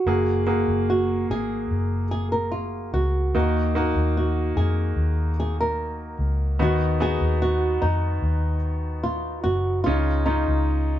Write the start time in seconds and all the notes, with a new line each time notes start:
Already playing: F#4
0.06 F#1 A#3 F#4 G#4
0.47 A#3 F#4 G#4
0.68 F#1
0.90 F#4
1.30 G#1 G#4
1.70 F#1
2.11 G#4
2.32 A#4
2.52 F4
2.93 C#2 F#4
3.34 D#2 D#3 A#3 D#4 F#4
3.75 A#3 D#4 F#4
3.95 D#2
4.17 F#4
4.56 F2 G#4
4.96 D#2
5.40 G#4
5.61 A#4
6.19 C#2
6.59 D#2 D#3 B3 D#4 F#4
7.00 B3 D#4 F#4 G#4
7.21 D#2
7.42 F#4
7.82 F2 D#4
8.22 D#2
9.03 F4
9.44 F#1 F#4
9.84 C#2 C#3 C#4 D#4 F4
10.26 C#4 D#4 F4
10.48 C#2